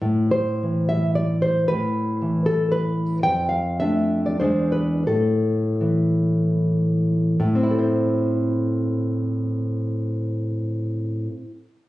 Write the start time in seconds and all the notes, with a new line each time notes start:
0.02 A2
0.31 C5
0.63 E3
0.89 E5
1.15 D5
1.42 C5
1.68 A2 B4
2.22 E3
2.46 A4
2.72 B4
3.23 F2 G5
3.49 F5
3.80 A3 D4 E5
4.26 D5
4.40 E2 G#3 D4 C5
4.72 B4
5.07 A2 A4
5.81 E3
7.40 A2
7.55 C4
7.63 E4
7.71 A4
7.79 C5